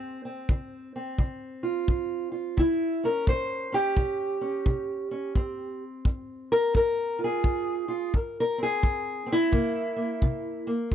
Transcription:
Already playing: steel-string acoustic guitar C#3 C4 C5
0.25 steel-string acoustic guitar C4
0.49 steel-string acoustic guitar C#3, kick
0.96 steel-string acoustic guitar C4
1.18 steel-string acoustic guitar C#3, kick
1.63 steel-string acoustic guitar F4
1.88 steel-string acoustic guitar C#3, kick
2.32 steel-string acoustic guitar F4
2.57 steel-string acoustic guitar C3 E4, kick
3.04 steel-string acoustic guitar C#4 A#4
3.27 steel-string acoustic guitar C3 C5, kick
3.72 steel-string acoustic guitar C#4 G4
3.97 steel-string acoustic guitar C3, kick
4.41 steel-string acoustic guitar C#4
4.66 steel-string acoustic guitar C3, kick
5.11 steel-string acoustic guitar C#4
5.35 steel-string acoustic guitar F2 C4, kick
6.05 steel-string acoustic guitar F2, kick
6.52 steel-string acoustic guitar A#4
6.74 steel-string acoustic guitar F2 A#4, kick
7.19 steel-string acoustic guitar F4
7.24 steel-string acoustic guitar G#4
7.44 steel-string acoustic guitar F2, kick
7.88 steel-string acoustic guitar F4
8.14 steel-string acoustic guitar F2 A#4, kick
8.40 steel-string acoustic guitar A#4
8.58 steel-string acoustic guitar C4
8.63 steel-string acoustic guitar G#4
8.83 steel-string acoustic guitar F2, kick
9.26 steel-string acoustic guitar C4
9.32 steel-string acoustic guitar E4
9.52 steel-string acoustic guitar C3 A#3, kick
9.96 steel-string acoustic guitar A#3
10.22 steel-string acoustic guitar C3, kick
10.67 steel-string acoustic guitar A#3
10.91 steel-string acoustic guitar F2 F4, kick

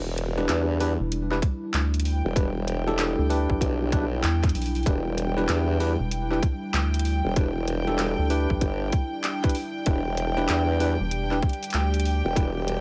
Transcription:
Already playing: wobble bass E1, analog synth pad G3 D4 E4
0.18 closed hi-hat
0.37 tine electric piano D4 E4 G4 B4, snare
0.49 wobble bass E2, clap, snare, closed hi-hat
0.80 tine electric piano D4 E4 G4 B4, open hi-hat
1.00 analog synth bass E1
1.12 closed hi-hat
1.31 tine electric piano D4 E4 G4 B4, clap
1.42 kick, closed hi-hat
1.74 analog synth bass D2, clap, closed hi-hat
1.94 closed hi-hat
2.00 closed hi-hat
2.05 string section G5, open hi-hat
2.25 wobble bass E1
2.36 tine electric piano D4 E4 G4 B4, kick, closed hi-hat
2.68 closed hi-hat
2.87 tine electric piano D4 E4 G4 A4, snare
2.99 clap, snare, closed hi-hat
3.19 analog synth bass D2
3.30 tine electric piano D4 E4 G4 B4, open hi-hat
3.50 analog synth bass B1, kick
3.61 wobble bass B1, kick, closed hi-hat
3.92 tine electric piano D4 E4 G4 B4, kick, closed hi-hat
4.24 analog synth bass E2, clap, closed hi-hat
4.43 kick, clap, closed hi-hat
4.49 closed hi-hat
4.55 analog synth bass B1, open hi-hat
4.62 open hi-hat
4.66 open hi-hat
4.75 open hi-hat
4.83 wobble bass E1, tine electric piano D4 E4 G4 B4, kick, closed hi-hat, open hi-hat
5.18 closed hi-hat
5.37 tine electric piano D4 E4 G4 B4, snare
5.49 wobble bass E2, clap, snare, closed hi-hat
5.80 tine electric piano D4 E4 G4 B4, open hi-hat
6.00 analog synth bass E1
6.11 closed hi-hat
6.31 tine electric piano D4 E4 G4 B4, clap
6.43 kick, closed hi-hat
6.74 analog synth bass D2, clap, closed hi-hat
6.94 closed hi-hat
6.99 closed hi-hat
7.05 open hi-hat
7.25 wobble bass E1
7.36 tine electric piano D4 E4 G4 B4, kick, closed hi-hat
7.68 closed hi-hat
7.87 tine electric piano D4 E4 G4 A4, snare
7.99 clap, snare, closed hi-hat
8.19 analog synth bass D2
8.30 tine electric piano D4 E4 G4 B4, open hi-hat
8.50 analog synth bass B1, kick
8.61 wobble bass G1, kick, closed hi-hat
8.92 kick, closed hi-hat
9.24 clap, closed hi-hat
9.44 tine electric piano D4 E4 G4 B4, kick, clap, closed hi-hat
9.49 closed hi-hat
9.55 open hi-hat
9.86 wobble bass E1, tine electric piano D4 E4 G4 B4, analog synth pad G4, kick, closed hi-hat
10.17 closed hi-hat
10.37 tine electric piano D4 E4 G4 B4, snare
10.49 wobble bass E2, clap, snare, closed hi-hat
10.80 tine electric piano D4 E4 G4 B4, open hi-hat
11.00 analog synth bass E1
11.11 closed hi-hat
11.31 tine electric piano D4 E4 G4 B4, clap
11.42 kick, closed hi-hat
11.49 closed hi-hat
11.53 closed hi-hat
11.63 closed hi-hat
11.70 clap, closed hi-hat
11.74 analog synth bass D2, closed hi-hat
11.94 closed hi-hat
12.00 closed hi-hat
12.05 open hi-hat
12.25 wobble bass E1
12.36 tine electric piano D4 E4 G4 B4, kick, closed hi-hat
12.68 closed hi-hat

